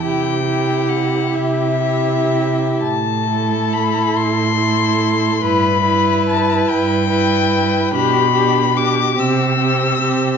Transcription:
<<
  \new Staff \with { instrumentName = "Violin" } { \time 6/8 \key e \minor \tempo 4. = 47 g''4 fis''8 e''4. | a''4 b''8 c'''4. | b''4 a''8 g''4. | \key g \major b''4 d'''8 e'''4. | }
  \new Staff \with { instrumentName = "Violin" } { \time 6/8 \key e \minor g'8 g'4. g'4 | r8 a'4. a'4 | b'8 b'4. b'4 | \key g \major g'8 g'8 g'8 g'8 g'8 g'8 | }
  \new Staff \with { instrumentName = "Viola" } { \time 6/8 \key e \minor e'8 e'4. e'4 | r8 e'4. e'4 | e'8 e'4. e'4 | \key g \major d'8 d'8 d'8 c'8 c'8 c'8 | }
  \new Staff \with { instrumentName = "Cello" } { \clef bass \time 6/8 \key e \minor c4. c4. | a,4. a,4. | g,4. g,4. | \key g \major b,4. c4. | }
>>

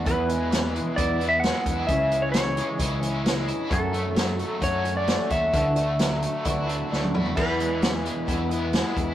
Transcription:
<<
  \new Staff \with { instrumentName = "Electric slide guitar" } { \time 4/4 \key e \mixolydian \tempo 4 = 131 b'2 d''8. e''16 fis''4 | e''8. cis''16 cis''2 r4 | a'2 cis''8. d''8. e''8~ | e''2. r4 |
b'1 | }
  \new Staff \with { instrumentName = "Grand piano" } { \time 4/4 \key e \mixolydian r1 | r1 | r1 | r1 |
<e' gis' b'>1 | }
  \new Staff \with { instrumentName = "Steel-string acoustic guitar" } { \time 4/4 \key e \mixolydian <e b e' gis'>8 <b e' gis'>4 <b e' gis'>8 <e b e' gis'>8 <b e' gis'>8 <e b e' gis'>4 | <cis e cis' e' gis'>4. <cis' e' gis'>8 <cis e cis' e' gis'>8 <cis' e' gis'>8 <e cis' e' gis'>4 | <fis, cis fis a cis' fis'>8 <fis a cis' fis'>4 <fis a cis' fis'>8 <fis, cis fis a cis' fis'>8 <fis a cis' fis'>8 <fis a cis' fis'>4 | <d e a d' fis'>8 <a d' fis'>4. <d e a d' fis'>8 <a d' fis'>8 <e a d' fis'>4 |
<e b e' gis'>8 <b e' gis'>4. <e b e' gis'>8 <b e' gis'>8 <e b e' gis'>4 | }
  \new Staff \with { instrumentName = "Overdriven electric guitar" } { \time 4/4 \key e \mixolydian e,8 gis8 e8 gis8 e'8 b8 gis8 e'8 | cis8 gis8 e8 gis8 e'8 cis'8 gis8 e'8 | fis,8 a8 fis8 a8 fis'8 cis'8 a8 fis'8 | d8 a8 fis8 a8 e'8 d'8 a8 e'8 |
e,8 gis8 e8 gis8 e'8 b8 gis8 e'8 | }
  \new Staff \with { instrumentName = "Picked electric bass" } { \clef bass \time 4/4 \key e \mixolydian e,2 e,4. e,8 | cis,2 cis,2 | fis,2 fis,4. dis,8 | d,2 d,4 d,8 e,8 |
e,2 e,4. e,8 | }
  \new DrumStaff \with { instrumentName = "Drums" } \drummode { \time 4/4 <hh bd>8 hh8 <hh sn>8 hh8 <hh bd>8 hh8 <hh sn>8 <hh bd>8 | <hh bd>8 hh8 <hh sn>8 hh8 <hh bd>8 hh8 <hh sn>8 hh8 | <hh bd>8 hh8 <hh sn>8 hh8 <hh bd>8 hh8 <hh sn>8 <hh bd>8 | <hh bd>8 hh8 <hh sn>8 hh8 <hh bd>8 hh8 sn16 tommh16 toml16 tomfh16 |
<cymc bd>8 hh8 <hh sn>8 hh8 <hh bd>8 hh8 <hh sn>8 <hh bd>8 | }
>>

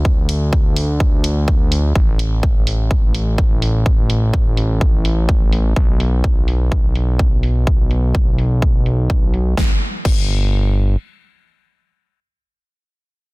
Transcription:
<<
  \new Staff \with { instrumentName = "Analog synth bass" } { \clef bass \time 4/4 \key b \phrygian \tempo 4 = 126 d,1 | a,,1~ | a,,1 | b,,1~ |
b,,1 | g,,8 r8 g,,2 r4 | r1 | }
  \new DrumStaff \with { instrumentName = "Drums" } \drummode { \time 4/4 bd8 hho8 bd8 hho8 bd8 hho8 bd8 hho8 | bd8 hho8 bd8 hho8 bd8 hho8 bd8 hho8 | bd8 hho8 bd8 hho8 bd8 hho8 bd8 hho8 | bd8 hho8 bd8 hho8 bd8 hho8 bd8 hho8 |
bd8 hho8 bd8 hho8 bd8 hho8 bd8 hho8 | <bd sn>4 <cymc bd>4 r4 r4 | r4 r4 r4 r4 | }
>>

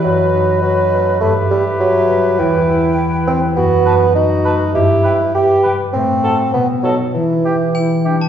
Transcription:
<<
  \new Staff \with { instrumentName = "Glockenspiel" } { \time 2/4 \key e \minor \tempo 4 = 102 r2 | r2 | r2 | r2 |
r2 | r2 | r4 g''8. a''16 | }
  \new Staff \with { instrumentName = "Flute" } { \time 2/4 \key e \minor dis''2 | e''2 | g''2 | r8 a''8 r8 a''8 |
r8 g''8 r8 g''8 | r8 fis''8 r8 dis''8 | r8 e''8 r8 e''8 | }
  \new Staff \with { instrumentName = "Cor anglais" } { \time 2/4 \key e \minor b'2 | b'2~ | b'2 | r8 b'8 r8 b'8 |
r8 b'8 r8 b'8 | r8 a'8 r8 a'8 | r8 g'8 r8 g'8 | }
  \new Staff \with { instrumentName = "Clarinet" } { \time 2/4 \key e \minor fis'2 | g'2 | e'2 | fis'4 fis'4 |
g'4 g'4 | a4 b4 | e'4 e'8 d'8 | }
  \new Staff \with { instrumentName = "Harp" } { \time 2/4 \key e \minor <fis, b b'>8 dis'8 b'8 a8 | g,8 e'8 b'8 g8 | e,8 e'8 b'8 g8 | fis,8 dis'8 b'8 a8 |
g,8 e'8 b'8 g8 | a,8 <fis' a'>8 b,8 <dis' a'>8 | e8 g'8 e'8 g8 | }
  \new Staff \with { instrumentName = "Bassoon" } { \time 2/4 \key e \minor fis4 fis4 | a8 g8 fis4 | e4 r8 c'8 | b4 dis'4 |
e'4 g'8 r8 | c'4 b8 fis8 | e4. r8 | }
>>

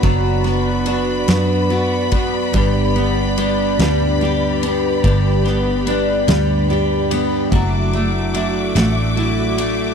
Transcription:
<<
  \new Staff \with { instrumentName = "String section" } { \time 6/8 \key g \lydian \tempo 4. = 48 << { <d'' b''>2.~ | <d'' b''>2.~ | <d'' b''>2. | <e'' d'''>2. | } \\ { fis'2. | g'2.~ | g'2. | fis'2. | } >> }
  \new Staff \with { instrumentName = "Clean electric guitar" } { \time 6/8 \key g \lydian <fis b d' fis'>8 <b d' fis'>8 <fis b d' fis'>8 <fis b d' fis'>8 <fis b d' fis'>8 <b d' fis'>8 | <g, d g b d' g'>8 <g b d' g'>8 <g b d' g'>8 <g, d g b d' g'>8 <g b d' g'>8 <g b d' g'>8 | <g, d g b d' g'>8 <g b d' g'>8 <g b d' g'>8 <g, d g b d' g'>8 <g b d' g'>8 <g b d' g'>8 | <fis a d' e'>8 <a d' e'>8 <fis a d' e'>8 <fis a d' e'>8 <fis a d' e'>8 <a d' e'>8 | }
  \new Staff \with { instrumentName = "Steel-string acoustic guitar" } { \time 6/8 \key g \lydian <fis b d' fis'>8 b8 d'8 b8 fis'8 b8 | g,8 b8 d'8 g8 g'8 b8 | g,8 b8 d'8 g8 g'8 b8 | fis8 a8 d'8 a8 e'8 a8 | }
  \new Staff \with { instrumentName = "Fingered electric bass" } { \clef bass \time 6/8 \key g \lydian fis,,4. fis,4. | g,,4. d,4. | g,,4. d,4. | fis,,4. a,,4. | }
  \new DrumStaff \with { instrumentName = "Drums" } \drummode { \time 6/8 <bd cymr>8 <cymr sn>8 cymr8 <cymr sn>8 cymr8 <bd cymr>8 | <bd cymr>8 cymr8 cymr8 <cymr sn>8 cymr8 cymr8 | <bd cymr>8 <cymr sn>8 cymr8 <cymr sn>8 cymr8 cymr8 | <bd cymr>8 cymr8 cymr8 <cymr sn>8 cymr8 cymr8 | }
>>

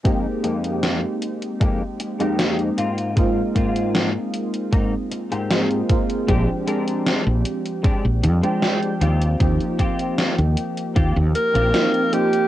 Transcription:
<<
  \new Staff \with { instrumentName = "Alto saxophone" } { \time 4/4 \key aes \lydian \tempo 4 = 77 r1 | r1 | r1 | r2 r8 bes'4 g'8 | }
  \new Staff \with { instrumentName = "Clean electric guitar" } { \time 4/4 \key aes \lydian <f, aes bes ees' g'>16 r16 <f, aes bes ees' g'>8. r8. <f, aes bes ees' g'>16 r8 <f, aes bes ees' g'>8. <aes, bes c' f'>8~ | <aes, bes c' f'>16 r16 <aes, bes c' f'>8. r8. <aes, bes c' ees'>16 r8 <aes, bes c' g'>8. r8 | <aes c' d' g'>16 r16 <aes c' d' bes'>8. r8. <aes c' d' g'>16 r8 <aes c' d' g'>8. <c' f' g'>8~ | <c' f' g'>16 r16 <c' f' g'>8. r8. <c' f' g'>16 r8 <c' f' g'>8. r8 | }
  \new Staff \with { instrumentName = "Synth keys" } { \time 4/4 \key aes \lydian <aes bes c' ees' g'>2~ <aes bes c' ees' g'>8. <aes bes c' ees' g'>8. r8 | <aes bes c' ees' f'>2. <aes bes c' ees' f'>8 <aes bes c' ees' f'>8 | <f aes c' d' g'>2~ <f aes c' d' g'>8. <f aes c' d' g''>8. r8 | <f bes c' ees' g'>2. <f bes c' ees' f'>8 <f bes c' ees' g'>8 | }
  \new Staff \with { instrumentName = "Fretless electric bass" } { \clef bass \time 4/4 \key aes \lydian r1 | r1 | bes,,16 r4 bes,,16 r8. bes,,16 f,16 r8. ees,8 | ees,16 r4 ees,16 r8 ees,16 ees,16 r16 bes,,16 r4 | }
  \new DrumStaff \with { instrumentName = "Drums" } \drummode { \time 4/4 <hh bd>8 hh16 hh16 <hh sn>8 hh16 hh16 <hh bd>8 hh16 hh16 <hh sn>16 hh16 hh16 hh16 | <hh bd>8 <hh bd>16 hh16 <hh sn>8 hh16 hh16 <hh bd>8 hh16 hh16 <hh sn>16 hh16 <hh bd>16 hh16 | <hh bd>8 hh16 hh16 <hh sn>8 hh16 hh16 <hh bd>8 hh16 hh16 <hh sn>16 hh16 hh16 hh16 | <hh bd>16 hh16 <hh bd>16 hh16 <hh sn>16 hh16 hh16 hh16 <hh bd>8 hh16 hh16 <hh sn>16 hh16 hh16 hh16 | }
>>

